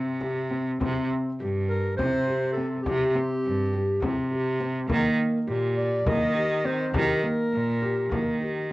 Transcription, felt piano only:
Already playing: C4
0.20 G4
0.51 C4
0.81 C4
1.40 G4
1.98 C4
2.28 G4
2.57 C4
2.86 G4
3.15 C4
3.73 G4
4.03 C4
4.31 G4
4.60 C4
4.89 A#3
5.47 G4
6.06 A#3
6.35 G4
6.64 C4
6.94 G4
7.23 A#3
7.82 G4
8.11 A#3
8.41 G4

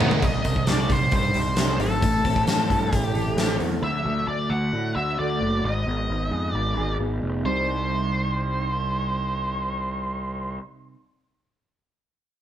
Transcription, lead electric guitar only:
0.24 D#5
0.70 D5
0.92 C5
1.16 C5
1.81 A4
2.97 G4
3.84 E5
4.28 D5
4.50 F#5
4.96 E5
5.19 D5
5.65 D#5
6.51 D5
7.46 C5

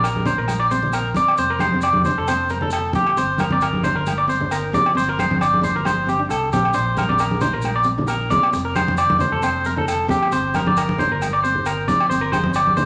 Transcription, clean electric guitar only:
0.04 A#4
0.26 C5
0.38 A#4
0.60 D5
0.71 C5
0.94 A#4
1.17 D5
1.39 C5
1.50 A#4
1.60 C5
1.83 D5
2.06 C5
2.18 A4
2.28 C5
2.50 A#4
2.62 A4
2.73 A4
2.95 G4
3.18 C5
3.40 A#4
3.52 D5
3.63 A#4
3.84 C5
3.96 A#4
4.18 D5
4.29 C5
4.52 A#4
4.74 D5
4.97 C5
5.09 A#4
5.19 C5
5.42 D5
5.64 C5
5.76 A#4
5.86 C5
6.09 G4
6.30 A4
6.53 G4
6.74 C5
6.98 A#4
7.09 D5
7.20 A#4
7.41 C5
7.53 A#4
7.76 D5
8.08 A#4
8.30 D5
8.53 muted clean electric guitar stroke
8.65 A#4
8.76 C5
8.98 D5
9.21 C5
9.32 A4
9.43 C5
9.66 A#4
9.78 A4
9.89 A4
10.10 G4
10.32 C5
10.56 A#4
10.67 D5
10.78 A#4
10.99 C5
11.12 A#4
11.33 D5
11.44 C5
11.66 A#4
11.88 D5
12.10 C5
12.21 A#4
12.32 C5
12.56 D5
12.77 C5

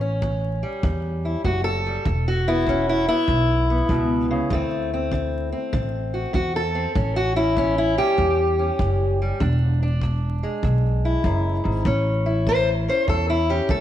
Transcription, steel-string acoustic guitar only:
Already playing: A2 C#5
0.01 C#4
0.22 A2
0.63 G3
0.84 A2
1.25 E4
1.45 A2 F#4
1.64 A4
1.87 G3
2.06 E2
2.28 F#4
2.48 B3 E4
2.67 E2 C#4
2.89 E4
3.08 B3 E4
3.29 E2
3.70 B3
3.90 B2
4.31 C#3
4.53 D3 A3 C4
4.94 C4
5.12 D3
5.52 C4
5.73 D3
6.14 F#4
6.33 D3 F#4
6.56 A4
6.75 C4
6.95 A2 C#4
7.16 F#4
7.36 C#4 E4
7.57 A2 C#4
7.78 E4
7.98 G3 G4
8.18 A2
8.59 C#4
8.79 A2
9.22 G3
9.41 E2 D4
9.83 D4
10.03 E2
10.43 G#3
10.64 E2
11.05 E4
11.25 F#2
11.64 G#2
11.86 A2 C#4
12.26 E4
12.47 A3 C5
12.88 C#4 C5
13.08 E2 A4
13.30 E4
13.50 C#4 G4
13.70 A3 A4

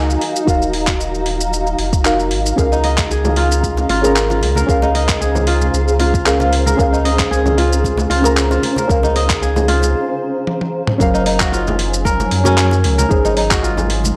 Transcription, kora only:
2.72 D#4
2.84 D#5
3.11 G#4
3.37 F4
3.89 F4
4.30 F4
4.56 A#4
4.82 D#4
4.95 D#5
5.21 G#4
5.47 F4
5.99 F4
6.40 F4
6.66 A#4
6.92 D#4
7.05 D#5
7.31 G#4
7.58 F4
8.10 F4
8.51 F4
8.77 A#4
9.03 D#4
9.16 D#5
9.42 G#4
9.68 F4
11.14 D#4
11.26 D#4
11.40 F#4
11.52 F4
12.05 A#4
12.45 C#4
12.98 A#4
13.25 D#4
13.37 D#4
13.51 F#4
13.63 F4

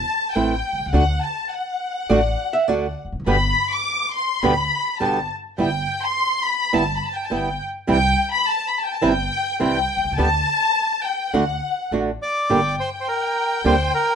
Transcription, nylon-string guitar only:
0.35 E3 A3 C4 E4
0.93 D3 A3 D4 F#4
2.10 D3 A3 D4 F#4
2.68 D3 A3 D4 F#4
3.26 B2 D3 G3 B3 G4
4.43 B2 D3 G3 B3 G4
5.00 B2 D3 G3 B3 G4
5.58 G3 B3 E4
6.73 G3 B3 E4
7.30 G3 B3 E4
7.87 C3 E3 G3 C4 E4
9.02 C3 E3 G3 C4 E4
9.60 C3 E3 G3 C4 E4
10.18 D3 G3 B3 G4
11.34 D3 A3 D4 F#4
11.92 D3 A3 D4 F#4
12.50 D3 G3 A#3 D4 G4
13.64 D3 G3 A#3 D4 G4

